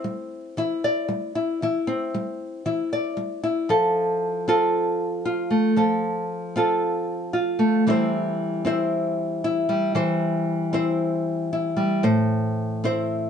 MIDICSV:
0, 0, Header, 1, 2, 480
1, 0, Start_track
1, 0, Key_signature, -1, "major"
1, 0, Tempo, 520833
1, 1501, Time_signature, 4, 2, 24, 8
1, 12256, End_track
2, 0, Start_track
2, 0, Title_t, "Nylon-string guitar"
2, 0, Program_c, 0, 24
2, 0, Note_on_c, 0, 60, 50
2, 0, Note_on_c, 0, 64, 52
2, 40, Note_on_c, 0, 55, 53
2, 483, Note_off_c, 0, 55, 0
2, 526, Note_on_c, 0, 52, 53
2, 531, Note_off_c, 0, 64, 0
2, 535, Note_on_c, 0, 64, 54
2, 777, Note_on_c, 0, 74, 52
2, 966, Note_off_c, 0, 52, 0
2, 1000, Note_on_c, 0, 55, 49
2, 1237, Note_off_c, 0, 64, 0
2, 1248, Note_on_c, 0, 64, 51
2, 1443, Note_off_c, 0, 55, 0
2, 1470, Note_off_c, 0, 74, 0
2, 1492, Note_off_c, 0, 64, 0
2, 1496, Note_on_c, 0, 52, 56
2, 1503, Note_on_c, 0, 64, 51
2, 1715, Note_off_c, 0, 60, 0
2, 1726, Note_on_c, 0, 60, 50
2, 1930, Note_off_c, 0, 52, 0
2, 1976, Note_on_c, 0, 55, 49
2, 2410, Note_off_c, 0, 55, 0
2, 2437, Note_off_c, 0, 64, 0
2, 2448, Note_on_c, 0, 52, 51
2, 2449, Note_on_c, 0, 64, 46
2, 2697, Note_on_c, 0, 74, 51
2, 2886, Note_off_c, 0, 52, 0
2, 2920, Note_on_c, 0, 55, 51
2, 3155, Note_off_c, 0, 64, 0
2, 3166, Note_on_c, 0, 64, 51
2, 3361, Note_off_c, 0, 55, 0
2, 3389, Note_off_c, 0, 74, 0
2, 3402, Note_on_c, 0, 53, 58
2, 3411, Note_on_c, 0, 69, 48
2, 3413, Note_off_c, 0, 64, 0
2, 4114, Note_off_c, 0, 60, 0
2, 4126, Note_on_c, 0, 60, 42
2, 4132, Note_off_c, 0, 69, 0
2, 4133, Note_on_c, 0, 65, 43
2, 4136, Note_on_c, 0, 69, 49
2, 4831, Note_off_c, 0, 65, 0
2, 4842, Note_on_c, 0, 65, 47
2, 5073, Note_on_c, 0, 57, 49
2, 5297, Note_off_c, 0, 57, 0
2, 5301, Note_off_c, 0, 53, 0
2, 5302, Note_off_c, 0, 65, 0
2, 5308, Note_off_c, 0, 69, 0
2, 5313, Note_on_c, 0, 53, 53
2, 5319, Note_on_c, 0, 69, 51
2, 6039, Note_off_c, 0, 60, 0
2, 6043, Note_on_c, 0, 60, 44
2, 6046, Note_off_c, 0, 69, 0
2, 6052, Note_on_c, 0, 65, 44
2, 6059, Note_on_c, 0, 69, 48
2, 6747, Note_off_c, 0, 65, 0
2, 6758, Note_on_c, 0, 65, 47
2, 6995, Note_on_c, 0, 57, 53
2, 7217, Note_off_c, 0, 53, 0
2, 7218, Note_off_c, 0, 57, 0
2, 7220, Note_off_c, 0, 65, 0
2, 7250, Note_on_c, 0, 52, 60
2, 7255, Note_off_c, 0, 60, 0
2, 7257, Note_on_c, 0, 55, 48
2, 7258, Note_off_c, 0, 69, 0
2, 7259, Note_on_c, 0, 60, 50
2, 7264, Note_on_c, 0, 64, 48
2, 7280, Note_on_c, 0, 72, 56
2, 7965, Note_off_c, 0, 60, 0
2, 7969, Note_on_c, 0, 60, 47
2, 7976, Note_off_c, 0, 64, 0
2, 7980, Note_on_c, 0, 64, 45
2, 7985, Note_off_c, 0, 72, 0
2, 7989, Note_on_c, 0, 72, 53
2, 8699, Note_off_c, 0, 64, 0
2, 8702, Note_on_c, 0, 64, 50
2, 8919, Note_off_c, 0, 55, 0
2, 8930, Note_on_c, 0, 55, 55
2, 9164, Note_off_c, 0, 52, 0
2, 9168, Note_on_c, 0, 52, 60
2, 9172, Note_off_c, 0, 72, 0
2, 9176, Note_on_c, 0, 72, 57
2, 9883, Note_off_c, 0, 60, 0
2, 9887, Note_on_c, 0, 60, 45
2, 9889, Note_off_c, 0, 64, 0
2, 9893, Note_on_c, 0, 64, 47
2, 9896, Note_off_c, 0, 72, 0
2, 9900, Note_on_c, 0, 72, 52
2, 10620, Note_off_c, 0, 64, 0
2, 10624, Note_on_c, 0, 64, 47
2, 10832, Note_off_c, 0, 55, 0
2, 10843, Note_on_c, 0, 55, 52
2, 11088, Note_on_c, 0, 45, 63
2, 11090, Note_off_c, 0, 72, 0
2, 11092, Note_off_c, 0, 55, 0
2, 11094, Note_on_c, 0, 72, 56
2, 11827, Note_off_c, 0, 60, 0
2, 11831, Note_on_c, 0, 60, 46
2, 11834, Note_off_c, 0, 64, 0
2, 11838, Note_on_c, 0, 64, 46
2, 11841, Note_off_c, 0, 72, 0
2, 11845, Note_on_c, 0, 72, 54
2, 12256, Note_off_c, 0, 45, 0
2, 12256, Note_off_c, 0, 52, 0
2, 12256, Note_off_c, 0, 60, 0
2, 12256, Note_off_c, 0, 64, 0
2, 12256, Note_off_c, 0, 72, 0
2, 12256, End_track
0, 0, End_of_file